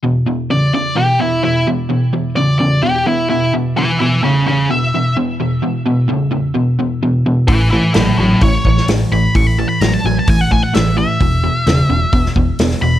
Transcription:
<<
  \new Staff \with { instrumentName = "Lead electric guitar" } { \time 4/4 \key e \major \tempo 4 = 129 r4 d''8 d''8 g'8 e'8 e'8 r8 | r4 d''8 d''8 g'8 e'8 e'8 r8 | <b' e''>8 <b' e''>8 <gis' cis''>8 <gis' cis''>8 e''4 r4 | r1 |
<b' e''>8 <b' e''>8 <a' cis''>8 <a' cis''>8 cis''4 r8 b''8 | cis'''16 b''16 a''16 b''16 ais''16 a''16 gis''16 a''16 gis''16 fis''16 gis''16 fis''16 e''8 e''8~ | e''2~ e''8 r4 b''8 | }
  \new Staff \with { instrumentName = "Overdriven electric guitar" } { \clef bass \time 4/4 \key e \major <e, b,>8 <e, b,>8 <e, cis>8 <e, cis>8 <e, b,>8 <e, b,>8 <e, b,>8 <e, b,>8 | <e, b,>8 <e, b,>8 <e, cis>8 <e, cis>8 <e, b,>8 <e, b,>8 <e, b,>8 <e, b,>8 | <e, b,>8 <e, b,>8 <e, cis>8 <e, cis>8 <e, b,>8 <e, b,>8 <e, b,>8 <e, b,>8 | <e, b,>8 <e, b,>8 <e, cis>8 <e, cis>8 <e, b,>8 <e, b,>8 <e, b,>8 <e, b,>8 |
<a, e>8 <a, e>8 <a, fis>8 <a, fis>8 <a, e>8 <a, e>8 <a, e>8 <a, e>8 | <a, e>8 <a, e>8 <a, fis>8 <a, fis>8 <a, e>8 <a, e>8 <a, e>8 <a, e>8 | <e, b,>8 <e, b,>8 <e, cis>8 <e, cis>8 <e, b,>8 <e, b,>8 <e, b,>8 <e, b,>8 | }
  \new Staff \with { instrumentName = "Picked electric bass" } { \clef bass \time 4/4 \key e \major r1 | r1 | r1 | r1 |
a,,4 a,,8 a,,8 a,,8 a,,8 a,,8 a,,8 | a,,4 a,,8 a,,8 a,,8 a,,8 a,,4 | e,,4 e,,8 e,,8 e,,8 e,,8 e,,8 e,,8 | }
  \new DrumStaff \with { instrumentName = "Drums" } \drummode { \time 4/4 r4 r4 r4 r4 | r4 r4 r4 r4 | r4 r4 r4 r4 | r4 r4 r4 r4 |
<hho bd>4 <hho sn>4 <hho bd>8 bd16 sn16 <hho sn>4 | <hho bd>4 <hho sn>4 <hho bd>8 bd8 <hho sn>4 | <hho bd>4 <hho sn>4 <hho bd>16 sn16 bd8 <hho sn>4 | }
>>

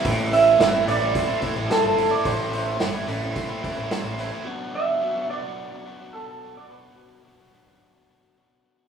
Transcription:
<<
  \new Staff \with { instrumentName = "Clean electric guitar" } { \time 4/4 \key a \dorian \tempo 4 = 108 r8 e''4 d''4. a'16 a'8 d''16 | c''4 r2. | r8 e''4 d''4. a'16 a'8 d''16 | b'4 r2. | }
  \new Staff \with { instrumentName = "Overdriven electric guitar" } { \time 4/4 \key a \dorian <a, e a c' e'>8 <e a c' e'>8 <a, e a c' e'>16 <a c' e'>16 <e a c' e'>16 <a c' e'>8 <a c' e'>16 <e a c' e'>16 <a c' e'>16 <a, e a c' e'>8 <e a c' e'>16 <a c' e'>16 | <a, e a c' e'>8 <e a c' e'>8 <a, e a c' e'>16 <a c' e'>16 <e a c' e'>16 <a c' e'>8 <a c' e'>16 <e a c' e'>16 <a c' e'>16 <a, e a c' e'>8 <e a c' e'>16 <a c' e'>16 | <b, fis b d' fis'>8 <fis b d' fis'>8 <b, fis b d' fis'>16 <b d' fis'>16 <fis b d' fis'>16 <b d' fis'>8 <b d' fis'>16 <fis b d' fis'>16 <b d' fis'>16 <b, fis b d' fis'>8 <fis b d' fis'>16 <b d' fis'>16 | <b, fis b d' fis'>8 <fis b d' fis'>8 <b, fis b d' fis'>16 <b d' fis'>16 <fis b d' fis'>16 <b d' fis'>8 <b d' fis'>16 <fis b d' fis'>16 <b d' fis'>16 <b, fis b d' fis'>8 <fis b d' fis'>16 <b d' fis'>16 | }
  \new Staff \with { instrumentName = "Overdriven electric guitar" } { \time 4/4 \key a \dorian a,8 e8 e8 g8 c'8 e'8 c'8 e'8 | a,8 e8 e8 g8 c'8 e'8 c'8 e'8 | r1 | r1 | }
  \new Staff \with { instrumentName = "Picked electric bass" } { \clef bass \time 4/4 \key a \dorian a,,4 g,,8 a,,8 r8. a,,16 r16 g,,8 r16 | a,,4 g,,8 a,,8 r8. a,,16 r16 a,,8 r16 | r1 | r1 | }
  \new DrumStaff \with { instrumentName = "Drums" } \drummode { \time 4/4 <hho bd>8 hho8 <hho sn>8 hho8 <hho bd>8 <hho bd>8 <hho sn>8 hho8 | <hho bd>8 hho8 <hho sn>8 hho8 <hho bd>8 <hho bd>8 <hho sn>8 hho8 | r4 r4 r4 r4 | r4 r4 r4 r4 | }
>>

